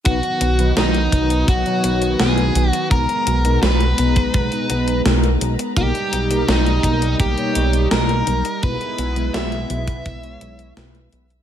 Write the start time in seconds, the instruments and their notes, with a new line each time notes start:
0.05 analog synth bass B1, analog polysynth B2 F#3 B3 D#4 B4, analog synth pad D#3 F#3 B3, lead electric guitar F#4, kick, closed hi-hat
0.23 closed hi-hat
0.41 analog synth bass B1, closed hi-hat
0.59 analog polysynth B2 F#3 B3 D#4 B4, closed hi-hat
0.77 analog synth bass B1, lead electric guitar D#4, snare, closed hi-hat
0.95 closed hi-hat
1.12 analog synth bass B1, analog polysynth B2 F#3 B3 D#4 B4, kick, closed hi-hat
1.30 closed hi-hat
1.48 analog synth bass B1, lead electric guitar F#4, kick, closed hi-hat
1.66 analog polysynth B2 F#3 B3 D#4 C#5, closed hi-hat
1.84 analog synth bass B1, closed hi-hat
2.02 closed hi-hat
2.20 analog synth bass B1, analog polysynth B2 F#3 B3 D#4 B4, lead electric guitar G#4, snare, closed hi-hat
2.38 closed hi-hat
2.55 analog synth bass B1, analog polysynth F#3 B3 D#4 B4, closed hi-hat
2.70 lead electric guitar F#4, closed hi-hat
2.91 analog synth bass B1, analog polysynth B2 G#3 B3 D#4 A#4, analog synth pad G#3 A#5, lead electric guitar A#4, kick, closed hi-hat
3.09 closed hi-hat
3.27 analog synth bass B1, closed hi-hat
3.45 analog polysynth B2 G#3 B3 D#4 A#4, closed hi-hat
3.62 analog synth bass B1, lead electric guitar B4, snare, closed hi-hat
3.80 closed hi-hat
3.98 analog synth bass B1, analog polysynth B2 G#3 B3 D#4 A#5, closed hi-hat
4.16 kick, closed hi-hat
4.34 analog synth bass B1, kick, closed hi-hat
4.52 analog polysynth B2 G#3 B3 D#4 B4, closed hi-hat
4.70 analog synth bass B1, closed hi-hat
4.88 closed hi-hat
5.05 analog synth bass B1, analog polysynth B2 G#3 B3 D#4 A#4, snare, closed hi-hat
5.24 closed hi-hat
5.41 analog synth bass B1, analog polysynth G#3 B3 D#4 A#4, closed hi-hat
5.59 closed hi-hat
5.77 analog synth bass B1, analog polysynth B2 G3 A#3 D#4 A#4, analog synth pad G3 D#4, lead electric guitar G4, kick, closed hi-hat
5.95 closed hi-hat
6.13 analog synth bass B1, closed hi-hat
6.30 analog polysynth B2 G3 A#3 D#4 A#4, closed hi-hat
6.48 analog synth bass B1, lead electric guitar D#4, snare, closed hi-hat
6.66 closed hi-hat
6.83 analog synth bass B1, analog polysynth B2 G3 A#3 D#4 A#4, kick, closed hi-hat
7.02 closed hi-hat
7.20 analog synth bass B1, lead electric guitar G4, kick, closed hi-hat
7.38 analog polysynth B2 G3 A#3 D#4 C#5, closed hi-hat
7.55 analog synth bass B1, closed hi-hat
7.73 closed hi-hat
7.91 analog synth bass B1, analog polysynth B2 G3 A#3 D#4 A#4, lead electric guitar A#4, snare, closed hi-hat
8.09 closed hi-hat
8.27 analog synth bass B1, analog polysynth G3 A#3 D#4 A#4, closed hi-hat
8.45 closed hi-hat
8.63 analog synth bass B1, analog polysynth B2 G#3 B3 E4 B4, analog synth pad G#3 B3 E4, lead electric guitar B4, kick, closed hi-hat
8.81 closed hi-hat
8.98 analog synth bass B1, closed hi-hat
9.16 analog polysynth B2 G#3 B3 E4 B4, closed hi-hat
9.34 analog synth bass B1, lead electric guitar E5, snare, closed hi-hat
9.52 closed hi-hat
9.70 analog synth bass B1, analog polysynth B2 G#3 B3 E4 B4, closed hi-hat
9.88 kick, closed hi-hat
10.06 analog synth bass B1, kick, closed hi-hat
10.23 analog polysynth B2 G#3 B3 E4 C#5, closed hi-hat
10.41 analog synth bass B1, closed hi-hat
10.59 closed hi-hat
10.77 analog synth bass B1, analog polysynth B2 G#3 B3 E4 B4, snare, closed hi-hat
10.95 closed hi-hat
11.12 analog synth bass B1, analog polysynth B2 G#3 B3 E4 B4, closed hi-hat
11.30 closed hi-hat